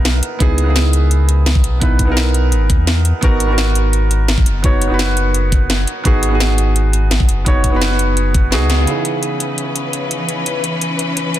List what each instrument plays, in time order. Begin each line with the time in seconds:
Already playing: sub bass B1, grand piano B3 D#4 E4 A#4 B4
0.05 snare, closed hi-hat
0.23 closed hi-hat
0.39 sub bass C#2, grand piano B3 D#4 E4 G#4, kick, closed hi-hat
0.58 closed hi-hat
0.64 grand piano B3 D#4
0.68 grand piano E4 G#4
0.76 snare, closed hi-hat
0.93 closed hi-hat
1.11 closed hi-hat
1.29 closed hi-hat
1.46 snare, closed hi-hat
1.55 kick
1.64 sub bass B1, closed hi-hat
1.80 grand piano B3 D#4 E4 B4, kick, closed hi-hat
1.99 kick, closed hi-hat
2.05 sub bass B1, grand piano B3 D#4
2.09 grand piano E4 A#4
2.17 snare, closed hi-hat
2.34 closed hi-hat
2.52 sub bass G#1, closed hi-hat
2.70 sub bass E2, kick, closed hi-hat
2.87 snare, closed hi-hat
3.05 closed hi-hat
3.21 sub bass G#1, grand piano B3 D#4 F#4 A#4, kick, closed hi-hat
3.40 closed hi-hat
3.46 grand piano B3 D#4
3.51 grand piano F#4 A#4
3.58 snare, closed hi-hat
3.75 closed hi-hat
3.93 closed hi-hat
4.11 closed hi-hat
4.28 snare, closed hi-hat
4.38 kick
4.46 sub bass F#1, closed hi-hat
4.62 grand piano B3 D#4 F#4 C#5, kick, closed hi-hat
4.82 closed hi-hat
4.88 sub bass F#1, grand piano B3 D#4
4.92 grand piano F#4 B4
4.99 snare, closed hi-hat
5.17 closed hi-hat
5.34 closed hi-hat
5.52 kick, closed hi-hat
5.70 snare, closed hi-hat
5.88 closed hi-hat
6.04 sub bass G#1, grand piano B3 D#4 F#4 G#4, kick, closed hi-hat
6.23 closed hi-hat
6.29 grand piano B3 D#4
6.33 grand piano F#4 G#4
6.40 snare, closed hi-hat
6.58 closed hi-hat
6.76 closed hi-hat
6.93 closed hi-hat
7.11 snare, closed hi-hat
7.20 kick
7.29 sub bass F#1, closed hi-hat
7.45 grand piano B3 D#4 F#4 C#5, kick, closed hi-hat
7.64 kick, closed hi-hat
7.70 sub bass F#1, grand piano B3 D#4
7.74 grand piano F#4 B4
7.82 snare, closed hi-hat
7.91 snare
7.99 closed hi-hat
8.17 closed hi-hat
8.34 kick, closed hi-hat
8.51 sub bass C#2, grand piano B3 D#4 F#4 G#4, snare, closed hi-hat
8.70 snare, closed hi-hat
8.84 grand piano C#3 B3 D#4, string section E3 C#4 B4, closed hi-hat
8.89 grand piano E4 G#4
9.05 closed hi-hat
9.23 closed hi-hat
9.40 closed hi-hat
9.58 closed hi-hat
9.76 closed hi-hat
9.93 closed hi-hat
10.11 closed hi-hat
10.29 closed hi-hat
10.46 closed hi-hat
10.64 closed hi-hat
10.81 closed hi-hat
10.99 closed hi-hat
11.17 closed hi-hat
11.34 closed hi-hat